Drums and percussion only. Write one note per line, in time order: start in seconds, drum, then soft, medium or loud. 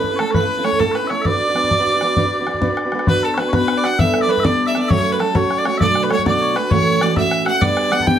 0.03 bodhran soft
0.19 bodhran medium
0.34 bodhran medium
0.65 bodhran medium
0.72 bodhran soft
0.80 bodhran medium
0.95 bodhran soft
1.10 bodhran soft
1.25 bodhran medium
1.40 bodhran soft
1.56 bodhran soft
1.63 bodhran soft
1.71 bodhran medium
1.86 bodhran soft
2.01 bodhran medium
2.16 bodhran medium
2.47 bodhran medium
2.54 bodhran soft
2.62 bodhran medium
2.77 bodhran medium
2.92 bodhran soft
2.99 bodhran medium
3.07 bodhran medium
3.38 bodhran medium
3.53 bodhran medium
3.68 bodhran medium
3.84 bodhran medium
3.99 bodhran medium
4.14 bodhran medium
4.37 bodhran soft
4.44 bodhran loud
4.75 bodhran medium
4.90 bodhran medium
5.20 bodhran medium
5.35 bodhran medium
5.51 bodhran medium
5.65 bodhran medium
5.81 bodhran medium
5.95 bodhran medium
6.10 bodhran medium
6.18 bodhran soft
6.26 bodhran medium
6.56 bodhran medium
6.71 bodhran medium
7.01 bodhran medium
7.16 bodhran medium
7.31 bodhran medium
7.46 bodhran medium
7.61 bodhran medium
7.77 bodhran medium
7.92 bodhran medium
8.00 bodhran soft
8.07 bodhran medium